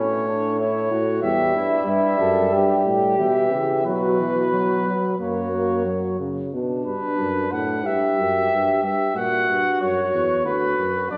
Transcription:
Already playing: bass trombone A2, flugelhorn C#4, trumpet C#5
0.28 flugelhorn D4
0.59 flugelhorn E4, trumpet C#5
0.91 bass trombone A2, flugelhorn F#4
1.22 bass trombone E2, trombone G3, flugelhorn G4, trumpet E5
1.55 bass trombone G2, flugelhorn E4
1.86 bass trombone G2, trumpet E5
2.20 bass trombone F#2, flugelhorn A4
2.52 bass trombone G2, flugelhorn G4
2.86 bass trombone A2
3.18 bass trombone B2, trombone E3, trumpet E5
3.51 bass trombone C#3, flugelhorn G4
3.85 bass trombone B2, trombone F#3, flugelhorn F#4, trumpet B4
4.20 trombone E3
4.52 trombone F#3
4.86 trombone F#3
5.19 bass trombone F#2, trombone A#3, flugelhorn F#4, trumpet C#5
5.52 trombone A#3
5.85 trombone F#3
6.19 trombone C#3
6.53 bass trombone B2, flugelhorn D4
6.86 bass trombone G2, trumpet B4
7.19 bass trombone F#2
7.52 bass trombone A2, trumpet F#5
7.84 bass trombone G2, flugelhorn G4, trumpet E5
8.19 bass trombone F#2
8.51 bass trombone G2
8.83 bass trombone G2, trumpet E5
9.16 bass trombone A#2, flugelhorn F#4, trumpet F#5
9.49 bass trombone G2
9.81 bass trombone F#2, trumpet C#5
10.14 bass trombone E2
10.46 bass trombone D2, flugelhorn F#4, trumpet B4
10.78 bass trombone F#2
11.10 bass trombone F#2, flugelhorn D4, trumpet D5

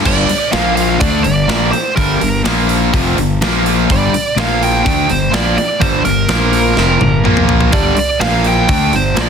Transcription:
0.05 fingered electric bass G1, distorted electric guitar G2 D3 G3, lead electric guitar D5, kick, crash
0.29 muted overdriven electric guitar stroke, muted distorted electric guitar stroke, open hi-hat
0.52 fingered electric bass A#1, distorted electric guitar A#2 F3 A#3, lead electric guitar F5, snare, open hi-hat
0.76 lead electric guitar F5, open hi-hat
1.00 fingered electric bass D2, distorted electric guitar D3 A3 D4, lead electric guitar D5, kick, open hi-hat
1.24 fingered electric bass G1, distorted electric guitar G2 D3, lead electric guitar D5, open hi-hat
1.48 fingered electric bass A#1, distorted electric guitar A#2 F3 A#3, snare, open hi-hat
1.72 lead electric guitar C5, muted overdriven electric guitar stroke, muted distorted electric guitar stroke, muted fingered electric bass stroke, open hi-hat
1.96 fingered electric bass G1, distorted electric guitar G2 D3 G3, lead electric guitar A#4, kick, open hi-hat
2.21 fingered electric bass G1, distorted electric guitar G2 D3, open hi-hat
2.44 fingered electric bass A#1, distorted electric guitar A#2 F3 A#3, snare, open hi-hat
2.69 open hi-hat
2.93 fingered electric bass F1, distorted electric guitar F2 C3 F3, kick, open hi-hat
3.17 fingered electric bass G1, distorted electric guitar G2 D3, open hi-hat
3.41 fingered electric bass A#1, distorted electric guitar A#2 F3 A#3, snare, open hi-hat
3.66 open hi-hat
3.89 fingered electric bass G1, distorted electric guitar G2 D3 G3, lead electric guitar D5, kick, open hi-hat
4.12 muted fingered electric bass stroke, muted overdriven electric guitar stroke, muted distorted electric guitar stroke, open hi-hat
4.36 fingered electric bass A#1, distorted electric guitar A#2 F3 A#3, lead electric guitar F5, snare, open hi-hat
4.63 lead electric guitar G5, open hi-hat
4.85 fingered electric bass D2, distorted electric guitar D3 A3 D4, kick, open hi-hat
5.09 fingered electric bass G1, distorted electric guitar G2 D3, lead electric guitar C5, open hi-hat
5.33 fingered electric bass A#1, distorted electric guitar A#2 F3 A#3, lead electric guitar D5, snare, open hi-hat
5.55 lead electric guitar D5, muted overdriven electric guitar stroke, muted distorted electric guitar stroke, muted fingered electric bass stroke, open hi-hat
5.81 fingered electric bass G1, distorted electric guitar G2 D3 G3, lead electric guitar C5, kick, open hi-hat
6.05 fingered electric bass G1, distorted electric guitar G2 D3, lead electric guitar A#4, open hi-hat
6.29 fingered electric bass A#1, distorted electric guitar A#2 F3 A#3, snare, open hi-hat
6.53 open hi-hat
6.77 fingered electric bass F1, distorted electric guitar F2 C3 F3, snare
7.01 fingered electric bass G1, distorted electric guitar G2 D3, high tom
7.24 fingered electric bass A#1, distorted electric guitar A#2 F3 A#3, mid tom
7.37 mid tom
7.49 floor tom
7.61 floor tom
7.72 fingered electric bass G1, distorted electric guitar G2 D3 G3, lead electric guitar D5, kick, open hi-hat
7.96 lead electric guitar D5, muted overdriven electric guitar stroke, muted fingered electric bass stroke, muted distorted electric guitar stroke, open hi-hat
8.20 fingered electric bass A#1, distorted electric guitar A#2 F3 A#3, lead electric guitar F5, snare, open hi-hat
8.44 lead electric guitar G5, open hi-hat
8.69 fingered electric bass D2, distorted electric guitar D3 A3 D4, kick, open hi-hat
8.93 fingered electric bass G1, distorted electric guitar G2 D3, lead electric guitar C5, open hi-hat
9.17 fingered electric bass A#1, distorted electric guitar A#2 F3 A#3, snare, open hi-hat
9.21 lead electric guitar D5

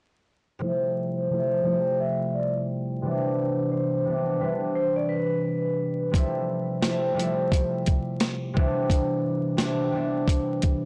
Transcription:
0.59 harp C3 F3 G3 A3, vibraphone C5
0.63 harp E4
1.30 harp C3 F3 G3 A3
1.34 harp E4
1.62 harp C3 F3 G3 A3
1.67 harp E4
2.00 vibraphone E5
2.34 vibraphone D5
3.02 harp C3 E3 G3 B3
3.06 harp D4
3.72 vibraphone C5
4.05 harp C3 E3 G3 B3
4.09 harp D4
4.40 harp C3 E3 G3 B3, vibraphone B4
4.44 harp D4
4.75 vibraphone C5
4.96 vibraphone D5
5.09 vibraphone B4
6.11 harp C3 F3 G3 A3, kick, closed hi-hat
6.16 harp E4
6.81 harp C3 F3 G3 A3, snare, closed hi-hat
6.86 harp E4
7.14 harp C3 F3 G3 A3
7.18 harp E4, closed hi-hat
7.52 kick, closed hi-hat
7.86 kick, closed hi-hat
8.20 snare, closed hi-hat
8.54 harp C3 E3 G3 B3, kick
8.58 harp D4
8.90 kick, closed hi-hat
9.57 harp C3 E3 G3 B3, snare, closed hi-hat
9.61 harp D4
9.92 harp C3 E3 G3 B3
9.96 harp D4
10.28 kick, closed hi-hat
10.62 kick, closed hi-hat

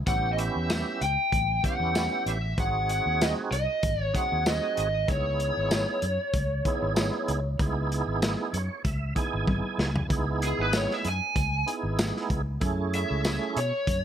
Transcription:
0.07 fingered electric bass A1, tonewheel organ B3 C#4 E4 G4, lead electric guitar F#5, kick, closed hi-hat
0.33 lead electric guitar D#5
0.38 lead electric guitar E5, closed hi-hat
0.56 fingered electric bass E2
0.70 lead electric guitar E5, snare, closed hi-hat, tambourine
1.01 fingered electric bass C#2, lead electric guitar G5, closed hi-hat
1.32 fingered electric bass A1, kick, closed hi-hat
1.63 tonewheel organ B3 C#4 E4 G4, lead electric guitar F#5, kick, closed hi-hat
1.80 fingered electric bass E2
1.95 snare, closed hi-hat, tambourine
2.26 fingered electric bass A1, lead electric guitar E5, closed hi-hat
2.58 fingered electric bass G#1, tonewheel organ C4 D#4 F#4 G#4, lead electric guitar F#5, kick, closed hi-hat
2.89 lead electric guitar F#5, closed hi-hat
3.06 fingered electric bass D#2
3.21 lead electric guitar D#5, snare, closed hi-hat, tambourine
3.51 fingered electric bass C2, lead electric guitar D#5, closed hi-hat
3.83 fingered electric bass G#1, kick, closed hi-hat
4.01 lead electric guitar C#5
4.13 tonewheel organ C4 D#4 F#4 G#4, lead electric guitar F#5, kick, closed hi-hat
4.32 fingered electric bass D#2
4.46 lead electric guitar D#5, snare, closed hi-hat, tambourine
4.77 fingered electric bass G#1, lead electric guitar D#5, closed hi-hat
5.07 fingered electric bass C#2, tonewheel organ B3 D#4 E4 G#4, lead electric guitar C#5, kick, closed hi-hat
5.40 closed hi-hat
5.57 fingered electric bass G#1
5.71 snare, closed hi-hat, tambourine
6.02 fingered electric bass F#2, closed hi-hat
6.33 fingered electric bass C#2, kick, closed hi-hat
6.65 tonewheel organ B3 D#4 E4 G#4, kick, closed hi-hat
6.82 fingered electric bass G#1
6.96 snare, closed hi-hat, tambourine
7.28 fingered electric bass C#2, closed hi-hat
7.59 fingered electric bass C#2, tonewheel organ B3 D#4 E4 G#4, kick, closed hi-hat
7.92 closed hi-hat
8.07 fingered electric bass G#1
8.22 snare, closed hi-hat, tambourine
8.53 fingered electric bass F#2, tonewheel organ C#5, closed hi-hat
8.84 fingered electric bass C#2, tonewheel organ E5, kick, closed hi-hat
9.15 tonewheel organ B3 D#4 E4 G#4 G#5, kick, closed hi-hat
9.33 fingered electric bass G#1
9.47 tonewheel organ G#5, kick, high tom
9.78 fingered electric bass C#2, snare
9.96 floor tom
10.09 fingered electric bass C#2, tonewheel organ B3 D#4 E4 G#4, kick, closed hi-hat
10.42 lead electric guitar G#4, closed hi-hat
10.59 fingered electric bass G#1, lead electric guitar B4
10.73 lead electric guitar C#5, snare, closed hi-hat, tambourine
10.91 lead electric guitar E5, snare
11.05 fingered electric bass F#2, lead electric guitar G#5, closed hi-hat
11.36 fingered electric bass C#2, kick, closed hi-hat
11.66 tonewheel organ B3 D#4 E4 G#4, closed hi-hat
11.83 fingered electric bass G#1
11.99 snare, closed hi-hat, tambourine
12.16 snare
12.30 fingered electric bass C#2, kick, closed hi-hat
12.60 fingered electric bass F#2, tonewheel organ A3 C#4 E4 G#4, kick, closed hi-hat
12.93 lead electric guitar E5, closed hi-hat
13.11 fingered electric bass C#2
13.25 snare, closed hi-hat, tambourine
13.56 fingered electric bass B2, lead electric guitar C#5, closed hi-hat
13.87 fingered electric bass F#2, kick, closed hi-hat

